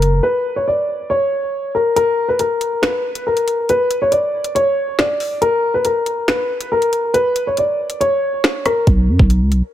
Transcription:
Already playing: F#1 A#4
0.02 closed hi-hat
0.23 B4
0.56 C#5
0.68 D5
1.10 C#5
1.75 A#4
1.96 A#4, closed hi-hat
2.28 B4
2.39 A#4, closed hi-hat
2.61 closed hi-hat
2.82 B4, finger snap, snare, closed hi-hat
3.15 closed hi-hat
3.27 A#4
3.37 closed hi-hat
3.48 closed hi-hat
3.69 B4, closed hi-hat
3.91 closed hi-hat
4.02 C#5
4.12 D5, closed hi-hat
4.44 closed hi-hat
4.55 C#5, closed hi-hat
4.99 D5, finger snap, snare
5.20 open hi-hat
5.42 A#4, closed hi-hat
5.74 B4
5.85 A#4, closed hi-hat
6.06 closed hi-hat
6.28 B4, finger snap, snare, closed hi-hat
6.61 closed hi-hat
6.72 A#4
6.82 closed hi-hat
6.93 closed hi-hat
7.14 B4, closed hi-hat
7.36 closed hi-hat
7.47 C#5
7.57 D5, closed hi-hat
7.90 closed hi-hat
8.01 C#5, closed hi-hat
8.44 finger snap, snare
8.65 A#4, cross-stick, closed hi-hat
8.87 B1, kick, closed hi-hat
9.09 F#2
9.19 B1, kick
9.30 closed hi-hat
9.41 C#2
9.52 B1, closed hi-hat

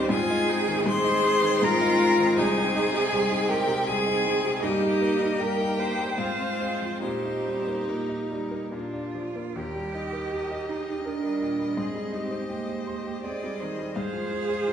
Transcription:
Already playing: D#2 D#3 G3 C4 D#4
0.09 G#2 C4 F4 G#4 G#5
0.30 D#4
0.49 G#3 D#4
0.68 D#3
0.86 G#2 G#4 C5 C6
1.04 D#4
1.22 G#3
1.43 D#3
1.62 G#2 F4 A#4 A#5
1.81 D#4
1.99 G#3
2.19 D#3
2.36 C2 D#4 G#4 G#5
2.56 D#4
2.75 G#3
2.93 C3
3.12 C2 G#4
3.30 D#4
3.48 G#3 G4 A#4 G5
3.68 C3
3.87 C2 G#4 G#5
4.06 D#4
4.25 G#3
4.44 C3
4.62 G2 A#3 D#4 G4 D#5
4.82 D#4
5.01 A#3
5.21 G3
5.40 G2 G4 A#4 G5
5.60 D#4
5.79 A#3 C5
5.98 G3
6.18 G#2 C4 F4 F5
6.37 C4
6.60 G#3
6.81 F3
7.01 A#2 C4 D#4 G4 C5
7.25 D#4
7.46 G3
7.67 A#3
7.88 A#2 A#3 A#4
8.09 D#4
8.31 G3
8.51 A#3
8.72 A#2 D4 F4
8.94 D4
9.15 F3
9.36 A#3
9.55 D#2 G4 A#4
9.75 G3
9.94 D#4 D#5
10.13 A#4
10.31 G4 A#4
10.51 D#5
10.69 D#4 G#4 A#5
10.88 G4
11.04 D4 A#4
11.22 G3
11.41 A#2 G4
11.59 G3
11.76 G#2 C4 G#4
11.94 G3
12.12 D#4 G4 C5
12.31 C5
12.49 A#3 G4
12.70 D#5
12.87 C6
13.07 G4
13.23 C4 G#4 C5 D5 D#5
13.44 G3
13.61 D#3 C5
13.78 G3
13.95 G#2 G#4 C5 F5
14.13 F3
14.31 F4
14.49 C5
14.67 F4 A#4

